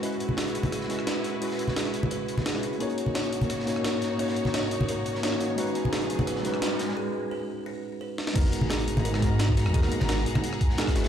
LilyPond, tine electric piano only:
\new Staff \with { instrumentName = "Tine electric piano" } { \time 4/4 \key gis \minor \tempo 4 = 173 <gis cis' e' fis' b'>2~ <gis cis' e' fis' b'>8 <gis cis' e' fis' b'>4. | <gis cis' e' fis' b'>2. r16 <gis cis' e' fis' b'>8. | <ais cis' dis' fis' cis''>2~ <ais cis' dis' fis' cis''>8 <ais cis' dis' fis' cis''>4. | <ais cis' dis' fis' cis''>2. <ais cis' dis' fis' cis''>16 r16 <ais cis' dis' fis' cis''>8 |
<gis cis' dis' fis' b'>2~ <gis cis' dis' fis' b'>8 <gis cis' dis' fis' b'>4. | r1 | <gis b dis' fis' ais'>2~ <gis b dis' fis' ais'>8 <gis b dis' fis' ais'>4. | <gis b dis' fis' ais'>2. <gis b dis' fis' ais'>16 r16 <gis cis' e' fis' b'>8 | }